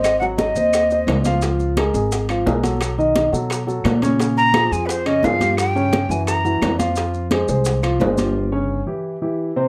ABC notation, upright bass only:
X:1
M:4/4
L:1/8
Q:1/4=173
K:Dblyd
V:1 name="Upright bass" clef=bass
A,,,3 E,,3 D,,2- | D,,3 A,,,3 =B,,,2- | =B,,,3 =B,,3 _B,,2- | B,,3 F,,3 G,,2- |
G,,3 ^F,,3 =F,,2- | F,,3 C,,3 G,,,2- | G,,,3 z4 z |]